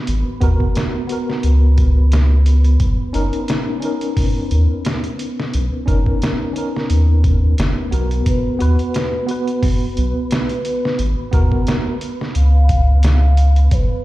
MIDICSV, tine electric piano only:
0, 0, Header, 1, 2, 480
1, 0, Start_track
1, 0, Tempo, 681818
1, 55, Time_signature, 4, 2, 24, 8
1, 9888, End_track
2, 0, Start_track
2, 0, Title_t, "Tine electric piano"
2, 0, Program_c, 0, 4
2, 0, Note_on_c, 0, 59, 71
2, 0, Note_on_c, 0, 66, 65
2, 0, Note_on_c, 0, 70, 76
2, 259, Note_off_c, 0, 59, 0
2, 267, Note_off_c, 0, 66, 0
2, 277, Note_off_c, 0, 70, 0
2, 285, Note_on_c, 0, 59, 84
2, 296, Note_on_c, 0, 66, 79
2, 304, Note_on_c, 0, 70, 94
2, 744, Note_off_c, 0, 59, 0
2, 749, Note_off_c, 0, 66, 0
2, 754, Note_off_c, 0, 70, 0
2, 756, Note_on_c, 0, 59, 74
2, 774, Note_on_c, 0, 66, 67
2, 790, Note_on_c, 0, 70, 80
2, 1953, Note_off_c, 0, 59, 0
2, 1962, Note_off_c, 0, 66, 0
2, 1970, Note_off_c, 0, 70, 0
2, 2203, Note_on_c, 0, 61, 88
2, 2212, Note_on_c, 0, 63, 86
2, 2218, Note_on_c, 0, 70, 90
2, 2663, Note_off_c, 0, 61, 0
2, 2668, Note_off_c, 0, 63, 0
2, 2671, Note_off_c, 0, 70, 0
2, 2676, Note_on_c, 0, 61, 76
2, 2694, Note_on_c, 0, 63, 67
2, 2710, Note_on_c, 0, 70, 82
2, 4099, Note_off_c, 0, 61, 0
2, 4109, Note_off_c, 0, 63, 0
2, 4117, Note_off_c, 0, 70, 0
2, 4123, Note_on_c, 0, 61, 82
2, 4131, Note_on_c, 0, 63, 75
2, 4140, Note_on_c, 0, 70, 95
2, 4583, Note_off_c, 0, 61, 0
2, 4587, Note_off_c, 0, 63, 0
2, 4592, Note_off_c, 0, 70, 0
2, 4597, Note_on_c, 0, 61, 73
2, 4614, Note_on_c, 0, 63, 67
2, 4633, Note_on_c, 0, 70, 81
2, 5544, Note_off_c, 0, 61, 0
2, 5553, Note_off_c, 0, 63, 0
2, 5562, Note_off_c, 0, 70, 0
2, 5569, Note_on_c, 0, 59, 73
2, 5576, Note_on_c, 0, 66, 63
2, 5587, Note_on_c, 0, 70, 80
2, 6026, Note_off_c, 0, 59, 0
2, 6030, Note_off_c, 0, 66, 0
2, 6035, Note_off_c, 0, 70, 0
2, 6048, Note_on_c, 0, 59, 84
2, 6057, Note_on_c, 0, 66, 79
2, 6067, Note_on_c, 0, 71, 98
2, 6506, Note_off_c, 0, 59, 0
2, 6510, Note_off_c, 0, 66, 0
2, 6515, Note_off_c, 0, 71, 0
2, 6521, Note_on_c, 0, 59, 75
2, 6535, Note_on_c, 0, 66, 68
2, 6555, Note_on_c, 0, 71, 85
2, 7942, Note_off_c, 0, 59, 0
2, 7949, Note_off_c, 0, 66, 0
2, 7959, Note_off_c, 0, 71, 0
2, 7965, Note_on_c, 0, 59, 93
2, 7974, Note_on_c, 0, 66, 78
2, 7982, Note_on_c, 0, 70, 103
2, 8424, Note_off_c, 0, 59, 0
2, 8429, Note_off_c, 0, 66, 0
2, 8433, Note_off_c, 0, 70, 0
2, 9888, End_track
0, 0, End_of_file